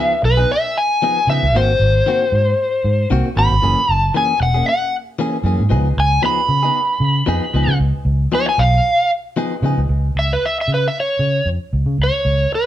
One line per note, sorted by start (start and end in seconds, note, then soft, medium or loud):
0.00 0.14 F3 medium
0.00 0.14 B3 medium
0.00 0.15 D#4 medium
0.00 0.15 G#4 medium
0.00 0.21 E5 loud
0.23 0.44 B1 medium
0.23 0.50 B4 loud
0.37 0.54 B3 soft
0.37 0.53 D#4 medium
0.37 0.52 G#4 soft
0.52 0.76 E5 medium
0.78 1.27 G#5 medium
1.02 1.19 F3 medium
1.02 1.19 B3 medium
1.02 1.19 D#4 medium
1.02 1.19 G#4 medium
1.27 1.39 C#3 medium
1.27 1.45 F3 medium
1.27 1.45 B3 medium
1.27 1.46 D#4 medium
1.27 1.54 E5 medium
1.31 1.46 G#4 medium
1.43 1.54 C#2 medium
1.54 1.74 G#1 loud
1.54 1.71 D#3 medium
1.54 1.71 A#3 medium
1.54 1.71 C4 medium
1.54 1.72 F#4 medium
1.54 3.08 C5 loud
1.80 2.00 G#1 medium
2.06 2.23 D#3 medium
2.06 2.23 A#3 medium
2.06 2.24 C4 medium
2.06 2.24 F#4 medium
2.32 2.53 G#2 medium
2.84 3.05 G#2 loud
3.10 3.22 C2 medium
3.10 3.27 D#3 medium
3.10 3.27 A#3 loud
3.10 3.28 C4 loud
3.10 3.28 F#4 loud
3.36 3.48 G#1 medium
3.36 3.53 D#3 medium
3.36 3.53 A#3 medium
3.36 3.54 C4 medium
3.36 3.54 F#4 medium
3.36 3.93 B5 loud
3.51 3.61 G#1 loud
3.62 3.74 F#1 loud
3.62 3.79 E3 medium
3.62 3.79 A#3 medium
3.62 3.80 C#4 medium
3.62 3.80 G#4 medium
3.89 4.09 F#1 medium
3.89 4.14 A5 loud
4.14 4.31 E3 medium
4.14 4.32 A#3 medium
4.14 4.32 C#4 medium
4.14 4.32 G#4 medium
4.14 4.41 G#5 medium
4.40 4.61 E1 medium
4.40 4.67 F#5 loud
4.54 4.71 A#3 soft
4.54 4.70 C#4 soft
4.54 4.70 G#4 medium
4.69 4.93 F#5 loud
5.19 5.36 E3 loud
5.19 5.36 A#3 medium
5.19 5.36 C#4 loud
5.19 5.37 G#4 loud
5.44 5.55 F#2 loud
5.44 5.61 E3 medium
5.44 5.62 A#3 medium
5.44 5.62 C#4 medium
5.44 5.62 G#4 medium
5.59 5.72 G#2 medium
5.69 5.92 C#2 loud
5.69 5.87 F3 medium
5.69 5.87 B3 medium
5.69 5.88 D#4 medium
5.69 5.88 G#4 loud
5.97 6.18 C#2 medium
5.97 6.24 G#5 loud
6.22 6.40 F3 medium
6.22 6.40 B3 medium
6.22 6.40 D#4 medium
6.22 6.41 G#4 medium
6.22 7.77 B5 loud
6.49 6.70 C#3 medium
6.63 6.80 B3 soft
6.63 6.79 D#4 medium
6.63 6.78 G#4 soft
7.00 7.21 C#3 medium
7.26 7.39 F2 loud
7.26 7.44 F3 loud
7.26 7.44 B3 medium
7.26 7.45 D#4 loud
7.26 7.45 G#4 loud
7.54 7.65 C#2 medium
7.54 7.71 F3 medium
7.54 7.71 B3 medium
7.54 7.72 D#4 medium
7.54 7.72 G#4 medium
7.67 7.77 C#3 loud
7.80 7.91 C#2 loud
8.05 8.26 C#2 medium
8.32 8.49 F3 medium
8.32 8.49 B3 medium
8.32 8.49 D#4 medium
8.32 8.50 G#4 medium
8.32 8.47 C#5 loud
8.49 8.59 G#5 medium
8.58 8.79 B1 medium
8.58 9.10 F5 loud
9.37 9.53 F3 medium
9.37 9.54 B3 medium
9.37 9.54 D#4 loud
9.37 9.54 G#4 loud
9.62 9.74 C#3 loud
9.62 9.80 F3 medium
9.62 9.80 B3 medium
9.62 9.80 D#4 medium
9.62 9.81 G#4 medium
9.78 9.87 C#2 loud
9.89 10.10 C#2 loud
10.15 10.36 C#2 medium
10.15 10.31 E5 medium
10.33 10.43 B4 medium
10.46 10.57 E5 medium
10.61 10.70 E5 medium
10.68 10.88 C#3 medium
10.74 10.85 B4 medium
10.88 10.97 E5 medium
11.00 11.48 C#5 medium
11.19 11.40 C#3 medium
11.46 11.57 F2 medium
11.73 11.84 C#2 medium
11.86 11.96 C#3 loud
11.98 12.09 C#2 medium
12.03 12.52 C#5 medium
12.25 12.45 C#2 medium
12.55 12.66 B4 medium